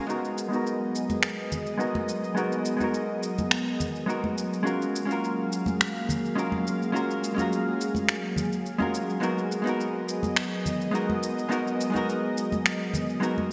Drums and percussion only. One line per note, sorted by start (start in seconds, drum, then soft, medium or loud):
0.10 shaker soft
0.25 shaker soft
0.38 shaker medium
0.53 shaker soft
0.67 shaker soft
0.95 shaker medium
1.10 high conga medium
1.10 shaker soft
1.23 finger snap medium
1.23 shaker soft
1.52 low conga medium
1.52 shaker medium
1.66 shaker soft
1.80 shaker soft
1.95 high conga medium
2.09 shaker medium
2.24 shaker soft
2.37 shaker soft
2.52 shaker soft
2.65 shaker medium
2.80 high conga medium
2.80 shaker soft
2.94 shaker soft
3.23 shaker medium
3.38 high conga medium
3.38 shaker soft
3.51 finger snap medium
3.51 shaker soft
3.80 low conga medium
3.80 shaker medium
3.95 shaker soft
4.09 shaker soft
4.24 high conga medium
4.38 shaker medium
4.53 shaker soft
4.67 shaker soft
4.82 shaker soft
4.96 shaker medium
5.11 shaker soft
5.24 shaker soft
5.52 shaker medium
5.66 high conga medium
5.66 shaker soft
5.81 finger snap medium
5.81 shaker soft
6.09 low conga medium
6.09 shaker medium
6.25 shaker soft
6.38 shaker soft
6.52 high conga medium
6.67 shaker medium
6.82 shaker soft
6.96 shaker soft
7.11 shaker soft
7.24 shaker medium
7.38 high conga medium
7.38 shaker soft
7.53 shaker soft
7.81 shaker medium
7.95 high conga medium
7.95 shaker soft
8.09 finger snap medium
8.09 shaker soft
8.36 low conga medium
8.36 shaker medium
8.53 shaker soft
8.66 shaker soft
8.81 high conga medium
8.94 shaker medium
9.10 shaker soft
9.23 shaker soft
9.38 shaker soft
9.52 shaker medium
9.67 shaker soft
9.80 shaker soft
10.09 shaker medium
10.23 high conga medium
10.23 shaker soft
10.36 finger snap medium
10.36 shaker soft
10.66 low conga medium
10.66 shaker medium
10.81 shaker soft
10.95 shaker soft
11.10 high conga medium
11.23 shaker medium
11.39 shaker soft
11.52 shaker soft
11.67 shaker soft
11.81 shaker medium
11.95 high conga soft
11.95 shaker soft
12.09 shaker soft
12.38 shaker medium
12.52 high conga medium
12.52 shaker soft
12.66 finger snap medium
12.66 shaker soft
12.94 low conga medium
12.94 shaker medium
13.09 shaker soft
13.23 shaker soft
13.38 high conga medium